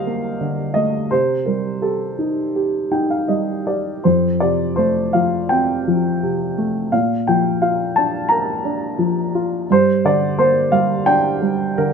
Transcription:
0.00 1.08 G2 soft
0.00 0.41 D3 soft
0.00 0.07 A#3 soft
0.00 1.08 G4 soft
0.00 1.14 A#4 medium
0.00 1.11 C5 medium
0.00 0.74 D#5 medium
0.00 0.79 F5 medium
0.07 1.09 A#3 soft
0.41 1.10 D3 soft
0.74 1.11 A3 soft
0.74 1.08 D#5 medium
1.11 4.01 C3 soft
1.11 1.49 C5 medium
1.46 2.89 G3 soft
1.46 1.84 A#4 soft
1.82 2.54 G4 soft
1.82 3.63 A4 soft
2.19 2.90 D#4 soft
2.56 3.65 G4 soft
2.91 4.01 D#4 soft
2.91 3.10 G5 soft
3.10 3.28 F5 soft
3.28 4.02 G3 soft
3.28 3.64 D#5 soft
3.67 4.04 G4 soft
3.67 4.02 D5 soft
4.04 6.88 F2 soft
4.04 4.43 C5 medium
4.40 5.83 C3 soft
4.40 4.79 D5 soft
4.76 6.18 A3 soft
4.76 5.15 C5 medium
5.13 5.86 F3 soft
5.13 5.51 F5 medium
5.49 6.88 C4 soft
5.49 6.53 G5 medium
5.88 6.90 F3 soft
6.23 6.90 C3 soft
6.58 6.91 A3 soft
6.92 9.65 A#2 soft
6.92 7.24 F5 medium
7.27 8.62 F3 soft
7.27 7.63 G5 medium
7.62 8.95 F4 soft
7.62 7.98 F5 medium
7.96 8.63 D4 soft
7.96 8.31 A5 medium
8.29 9.65 A#4 soft
8.29 9.29 A#5 medium
8.65 9.65 D4 soft
8.99 9.66 F3 soft
9.35 9.68 F4 soft
9.70 11.93 G2 soft
9.70 10.02 C5 medium
10.05 11.38 D3 soft
10.05 10.39 D5 medium
10.39 11.74 A#3 soft
10.39 10.73 C5 medium
10.72 11.40 G3 soft
10.72 11.07 F5 medium
11.06 11.93 D4 soft
11.06 11.80 G5 medium
11.42 11.93 G3 soft
11.78 11.93 D3 soft
11.78 11.93 A#4 medium

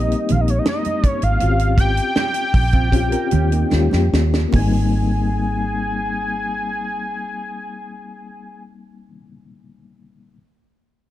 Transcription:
0.00 0.13 A#1 medium
0.00 1.43 G3 medium
0.00 1.43 A#3 medium
0.00 1.40 C4 medium
0.00 1.42 D#4 medium
0.00 1.20 G4 medium
0.00 0.33 D#5 loud
0.12 closed hi-hat soft
0.29 0.59 A#1 medium
0.29 0.42 F5 medium
0.29 closed hi-hat medium
0.29 muted conga soft
0.29 low conga medium
0.41 0.51 D#5 medium
0.48 0.60 C#5 medium
0.48 closed hi-hat soft
0.59 0.68 D#5 medium
0.66 1.09 D#5 medium
0.66 snare loud
0.66 high conga medium
0.85 closed hi-hat soft
0.85 high conga medium
1.03 muted fingered electric bass stroke soft
1.03 kick medium
1.03 closed hi-hat medium
1.09 1.25 C#5 medium
1.22 1.37 G#1 medium
1.22 1.79 F5 medium
1.22 closed hi-hat medium
1.40 1.99 G#1 loud
1.40 2.70 C4 medium
1.40 2.70 C#4 medium
1.40 2.71 F4 medium
1.40 1.49 F#4 medium
1.40 closed hi-hat medium
1.40 muted conga medium
1.50 2.75 G4 medium
1.59 closed hi-hat medium
1.78 4.09 G5 medium
1.78 kick loud
1.78 closed hi-hat medium
1.78 muted conga soft
1.97 closed hi-hat medium
2.16 snare loud
2.16 high conga medium
2.34 closed hi-hat medium
2.54 3.14 A#1 medium
2.54 kick loud
2.54 open hi-hat medium
2.54 muted conga soft
2.72 2.92 C4 soft
2.72 2.91 F4 medium
2.72 kick medium
2.72 closed hi-hat soft
2.92 3.72 C4 medium
2.92 3.11 C#4 medium
2.92 3.71 C#4 medium
2.92 3.72 F4 medium
2.92 3.11 G4 medium
2.92 3.73 G4 medium
2.92 kick medium
2.92 closed hi-hat medium
3.12 3.31 F4 medium
3.12 3.31 A#4 medium
3.12 closed hi-hat medium
3.31 3.63 D#2 medium
3.31 3.51 C#4 medium
3.31 3.51 G4 medium
3.31 closed hi-hat medium
3.31 muted conga medium
3.31 low conga medium
3.51 3.90 A#3 soft
3.51 3.90 D#4 soft
3.51 closed hi-hat soft
3.71 3.88 D#2 medium
3.71 4.41 A#3 medium
3.71 4.42 C#4 medium
3.71 4.42 F4 medium
3.71 4.43 G4 medium
3.71 snare medium
3.71 high conga medium
3.91 4.08 F2 medium
3.91 snare medium
3.91 high conga medium
4.13 4.44 D#2 medium
4.13 snare medium
4.34 snare medium
4.48 9.07 A#3 medium
4.53 9.13 G#1 loud
4.53 9.11 C4 medium
4.53 8.63 G#5 medium
4.53 kick medium
4.53 open hi-hat medium
4.53 muted conga medium
4.57 9.16 D#4 medium
4.61 9.20 G3 medium

